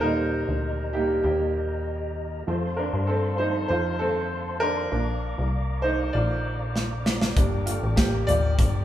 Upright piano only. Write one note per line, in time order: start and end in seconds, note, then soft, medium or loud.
0.00 2.43 A#2 soft
0.00 0.93 G3 soft
0.00 0.93 A#3 medium
0.00 0.03 D#4 medium
0.00 0.90 D#4 medium
0.00 0.96 A#4 medium
0.00 2.49 C5 medium
0.93 1.22 G3 soft
0.93 1.23 A#3 medium
0.93 1.22 D#4 soft
0.93 1.22 G4 medium
1.23 2.13 A#3 medium
1.23 2.12 G4 medium
2.47 2.88 F3 soft
2.47 2.88 A3 soft
2.47 2.88 C4 soft
2.77 3.07 D4 medium
2.77 3.09 A#4 medium
3.07 3.37 C4 medium
3.07 3.39 A4 medium
3.38 3.67 F3 soft
3.38 3.67 A3 soft
3.38 3.67 C4 soft
3.38 3.68 D#4 medium
3.38 3.67 C5 medium
3.68 3.99 F4 medium
3.68 4.01 C5 medium
3.99 4.58 C4 medium
3.99 4.63 A4 medium
4.60 4.91 D4 medium
4.60 5.87 A#4 loud
4.91 5.79 F3 soft
4.91 5.80 A#3 soft
4.91 5.80 D4 medium
5.82 6.12 D#4 medium
5.82 6.14 C5 medium
6.13 7.02 F4 medium
6.13 7.01 D5 medium
7.36 8.24 G3 soft
7.36 7.97 A#3 soft
7.36 8.25 D4 soft
7.66 7.96 A3 medium
7.66 7.98 F4 medium
7.96 8.05 A#3 medium
7.96 8.03 G4 medium
8.27 8.85 F4 medium
8.27 8.85 D5 loud